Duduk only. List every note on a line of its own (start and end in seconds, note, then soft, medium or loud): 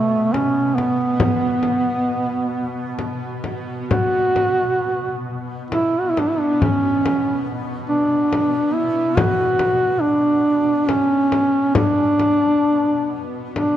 0.00 0.35 A3 medium
0.33 0.77 C#4 loud
0.75 2.97 B3 medium
3.89 5.22 F#4 loud
5.71 6.02 E4 medium
6.00 6.12 F#4 medium
6.10 6.21 E4 medium
6.19 6.31 D4 medium
6.30 6.41 E4 medium
6.40 6.64 D4 medium
6.62 7.48 C#4 medium
7.89 8.76 D4 medium
8.74 9.17 E4 medium
9.16 10.03 F#4 loud
10.01 10.90 D4 loud
10.88 11.75 C#4 medium
11.75 13.23 D4 loud
13.54 13.77 D4 medium